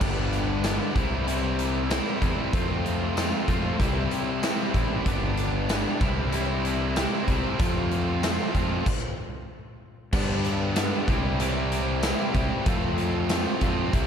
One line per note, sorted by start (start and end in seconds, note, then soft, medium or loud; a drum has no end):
0.00 0.79 G1 loud
0.00 0.63 G2 medium
0.00 0.63 D3 medium
0.00 0.64 G3 medium
0.00 0.94 B3 medium
0.00 0.64 B3 loud
0.00 0.94 D4 medium
0.00 0.65 D4 loud
0.00 0.94 G4 medium
0.00 0.65 G4 loud
0.00 0.94 B4 medium
0.00 kick loud
0.00 crash loud
0.33 closed hi-hat medium
0.64 0.94 G2 medium
0.64 0.94 D3 medium
0.64 0.94 G3 medium
0.64 0.94 B3 medium
0.64 0.95 D4 medium
0.64 0.95 G4 medium
0.64 snare loud
0.64 closed hi-hat loud
0.64 tambourine loud
0.95 1.99 C2 loud
0.95 1.26 C3 medium
0.95 1.27 E3 medium
0.95 1.27 G3 loud
0.95 2.52 C4 medium
0.95 1.28 C4 loud
0.95 2.52 E4 medium
0.95 1.29 E4 loud
0.95 2.52 G4 medium
0.95 2.52 C5 medium
0.95 kick loud
0.95 closed hi-hat medium
1.28 1.89 C3 loud
1.28 1.89 E3 loud
1.28 1.90 G3 loud
1.28 1.91 C4 loud
1.28 1.91 E4 loud
1.28 closed hi-hat loud
1.59 closed hi-hat medium
1.90 2.21 C3 medium
1.90 2.22 E3 medium
1.90 2.22 G3 medium
1.90 2.23 C4 medium
1.90 2.23 E4 medium
1.90 snare loud
1.90 closed hi-hat loud
1.90 tambourine loud
2.22 2.35 E2 loud
2.22 2.52 C3 medium
2.22 2.52 E3 medium
2.22 2.53 G3 medium
2.22 2.53 C4 medium
2.22 2.53 E4 medium
2.22 kick medium
2.22 closed hi-hat medium
2.53 3.31 F2 loud
2.53 3.15 F2 medium
2.53 3.16 C3 medium
2.53 3.16 F3 medium
2.53 3.17 A3 loud
2.53 3.17 C4 loud
2.53 3.78 C4 medium
2.53 3.80 F4 medium
2.53 3.17 F4 loud
2.53 3.79 A4 medium
2.53 3.79 C5 medium
2.53 kick loud
2.53 closed hi-hat loud
2.86 closed hi-hat medium
3.16 3.46 F2 medium
3.16 3.47 C3 medium
3.16 3.48 F3 medium
3.16 3.48 A3 medium
3.16 3.48 C4 medium
3.16 3.49 F4 loud
3.16 snare loud
3.16 closed hi-hat loud
3.16 tambourine loud
3.47 3.78 F2 medium
3.47 3.74 F2 loud
3.47 3.78 C3 medium
3.47 3.78 F3 medium
3.47 3.79 A3 medium
3.47 3.79 C4 medium
3.47 3.79 F4 loud
3.47 kick medium
3.47 closed hi-hat medium
3.80 4.06 C2 loud
3.80 4.42 C3 medium
3.80 4.42 E3 medium
3.80 4.43 G3 medium
3.80 5.05 C4 medium
3.80 4.44 C4 loud
3.80 5.05 E4 medium
3.80 4.44 E4 loud
3.80 5.06 G4 medium
3.80 5.05 C5 medium
3.80 kick medium
3.80 closed hi-hat medium
4.11 closed hi-hat medium
4.43 4.74 C3 medium
4.43 4.75 E3 medium
4.43 4.75 G3 medium
4.43 4.76 C4 medium
4.43 4.76 E4 loud
4.43 snare loud
4.43 closed hi-hat loud
4.43 tambourine loud
4.74 5.01 A1 loud
4.74 5.05 C3 medium
4.74 5.05 E3 medium
4.74 5.06 G3 medium
4.74 5.06 C4 medium
4.74 5.06 E4 medium
4.74 kick medium
4.74 closed hi-hat medium
5.06 5.84 G1 loud
5.06 5.68 G2 medium
5.06 5.69 D3 medium
5.06 5.69 G3 medium
5.06 6.01 B3 medium
5.06 5.70 B3 loud
5.06 6.01 D4 medium
5.06 5.70 D4 loud
5.06 6.00 G4 medium
5.06 5.71 G4 loud
5.06 6.01 B4 medium
5.06 kick loud
5.06 closed hi-hat loud
5.37 closed hi-hat medium
5.69 5.99 G2 medium
5.69 6.00 D3 medium
5.69 6.00 G3 medium
5.69 6.00 B3 medium
5.69 6.00 D4 medium
5.69 6.01 G4 medium
5.69 snare loud
5.69 closed hi-hat loud
5.69 tambourine loud
6.00 7.05 C2 loud
6.00 6.32 C3 loud
6.00 6.32 E3 loud
6.00 6.33 G3 loud
6.00 7.58 C4 medium
6.00 6.33 C4 loud
6.00 7.58 E4 medium
6.00 6.34 E4 loud
6.00 7.58 G4 medium
6.00 7.58 C5 medium
6.00 kick loud
6.00 closed hi-hat medium
6.32 6.95 C3 medium
6.32 6.96 E3 medium
6.32 6.96 G3 loud
6.32 6.97 C4 loud
6.32 6.97 E4 loud
6.32 closed hi-hat loud
6.65 closed hi-hat medium
6.96 7.27 C3 medium
6.96 7.28 E3 medium
6.96 7.28 G3 medium
6.96 7.28 C4 medium
6.96 7.29 E4 medium
6.96 snare loud
6.96 closed hi-hat loud
6.96 tambourine loud
7.28 7.41 C2 medium
7.28 7.58 C3 medium
7.28 7.58 E3 medium
7.28 7.59 G3 medium
7.28 7.58 C4 loud
7.28 7.59 E4 medium
7.28 kick medium
7.28 closed hi-hat medium
7.59 8.21 F2 medium
7.59 8.38 F2 loud
7.59 8.21 C3 loud
7.59 8.22 F3 loud
7.59 8.23 A3 loud
7.59 8.85 C4 medium
7.59 8.23 C4 loud
7.59 8.86 F4 medium
7.59 8.23 F4 loud
7.59 8.85 A4 medium
7.59 8.85 C5 medium
7.59 kick loud
7.59 closed hi-hat loud
7.91 closed hi-hat medium
8.22 8.52 F2 medium
8.22 8.53 C3 medium
8.22 8.53 F3 medium
8.22 8.54 A3 medium
8.22 8.54 C4 medium
8.22 8.55 F4 medium
8.22 snare loud
8.22 closed hi-hat loud
8.22 tambourine loud
8.53 8.84 F2 medium
8.53 8.81 F2 loud
8.53 8.84 C3 medium
8.53 8.84 F3 medium
8.53 8.84 A3 medium
8.53 8.85 C4 medium
8.53 8.85 F4 medium
8.53 kick medium
8.53 closed hi-hat medium
8.86 kick loud
8.86 crash loud
10.13 10.75 G2 loud
10.13 10.91 G2 loud
10.13 10.75 D3 loud
10.13 10.76 G3 loud
10.13 10.77 B3 loud
10.13 10.77 D4 loud
10.13 10.77 G4 medium
10.13 kick loud
10.13 crash loud
10.44 closed hi-hat medium
10.76 11.06 G2 medium
10.76 11.06 D3 medium
10.76 11.07 G3 medium
10.76 11.07 B3 medium
10.76 11.07 D4 medium
10.76 11.07 G4 medium
10.76 snare loud
10.76 closed hi-hat loud
10.76 tambourine loud
11.08 12.12 C2 loud
11.08 11.39 C3 medium
11.08 11.39 E3 medium
11.08 11.40 G3 loud
11.08 11.40 C4 loud
11.08 11.41 E4 loud
11.08 11.41 G4 loud
11.08 kick loud
11.08 closed hi-hat medium
11.40 12.02 C3 medium
11.40 12.03 E3 loud
11.40 12.04 G3 loud
11.40 12.04 C4 loud
11.40 12.03 E4 loud
11.40 12.04 G4 loud
11.40 closed hi-hat loud
11.72 closed hi-hat medium
12.03 12.34 C3 medium
12.03 12.35 E3 medium
12.03 12.35 G3 medium
12.03 12.36 C4 loud
12.03 12.35 E4 loud
12.03 12.36 G4 loud
12.03 snare loud
12.03 closed hi-hat loud
12.03 tambourine loud
12.34 12.48 C2 loud
12.34 12.65 C3 medium
12.34 12.65 E3 medium
12.34 12.66 G3 medium
12.34 12.66 C4 medium
12.34 12.66 E4 medium
12.34 12.66 G4 medium
12.34 kick medium
12.34 closed hi-hat medium
12.66 13.29 F2 medium
12.66 13.45 F2 loud
12.66 13.30 C3 medium
12.66 13.30 F3 medium
12.66 13.30 A3 medium
12.66 13.31 C4 loud
12.66 13.31 F4 loud
12.66 kick loud
12.66 closed hi-hat loud
12.98 closed hi-hat medium
13.29 13.61 F2 medium
13.29 13.61 C3 medium
13.29 13.62 F3 medium
13.29 13.62 A3 medium
13.29 13.62 C4 medium
13.29 13.63 F4 medium
13.29 snare loud
13.29 closed hi-hat loud
13.29 tambourine loud
13.61 13.88 F2 loud
13.61 13.92 F2 medium
13.61 13.92 C3 medium
13.61 13.93 F3 medium
13.61 13.93 A3 medium
13.61 13.93 C4 medium
13.61 13.93 F4 loud
13.61 kick medium
13.61 closed hi-hat medium
13.93 14.07 C2 loud
13.93 14.07 C3 medium
13.93 14.07 E3 medium
13.93 14.07 G3 loud
13.93 14.07 C4 loud
13.93 14.07 E4 loud
13.93 kick medium
13.93 closed hi-hat loud